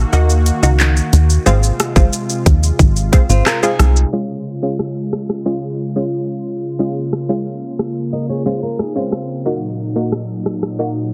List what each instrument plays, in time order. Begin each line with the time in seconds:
Already playing: analog synth pad D#3 A#3 F#4
0.13 analog synth bass D#2, synth stab A#3 D#4 F#4, shaker
0.30 shaker
0.46 closed hi-hat, shaker
0.63 analog synth bass C#2, synth stab A#3 D#4 F#4, shaker
0.80 clap, shaker
0.97 shaker
1.13 analog synth bass D#2, closed hi-hat, shaker
1.30 shaker
1.46 analog synth bass G#1, analog synth pad C3 G#3 F4, synth stab G#3 C4 F4, shaker
1.63 shaker
1.80 cross-stick, closed hi-hat, shaker
1.96 analog synth bass G#1, synth stab G#3 C4 F4, kick, shaker
2.13 shaker
2.29 shaker
2.46 analog synth bass D#2, kick, closed hi-hat, shaker
2.63 shaker
2.79 analog synth bass G#1, kick, shaker
2.96 shaker
3.12 synth stab G#3 C4 F4, kick, closed hi-hat, shaker
3.29 analog synth bass G#1, nylon-string guitar C4 F4, shaker
3.46 nylon-string guitar F4 A#4, cross-stick, clap, shaker
3.63 synth stab G#3 C4 F4, nylon-string guitar D#4 G#4, shaker
3.79 analog synth bass C2, cross-stick, closed hi-hat, shaker
3.96 shaker
4.13 analog synth pad C#3 G#3 F4, synth stab G#3 C#4 F4
4.62 synth stab G#3 C#4 F4
4.79 cross-stick
5.13 cross-stick
5.30 cross-stick
5.46 synth stab G#3 C#4 F4
5.96 synth stab G#3 C#4 F4
6.79 synth stab G#3 C#4 F4, analog synth pad A#3
7.13 cross-stick
7.29 synth stab G#3 C#4 F4
7.79 cross-stick
8.13 nylon-string guitar A#4 D#5
8.29 nylon-string guitar G#4 C#5
8.46 synth stab G#3 C#4 F4, nylon-string guitar F4 C5
8.63 nylon-string guitar F4 A#4
8.79 nylon-string guitar D#4 G#4, cross-stick
8.96 synth stab G#3 C#4 F4, nylon-string guitar C4 F4
9.12 cross-stick
9.46 analog synth pad A#2 F#3 D#4, synth stab A#3 D#4 F#4
9.96 synth stab A#3 D#4 F#4
10.12 cross-stick
10.46 cross-stick
10.63 cross-stick
10.79 synth stab A#3 D#4 F#4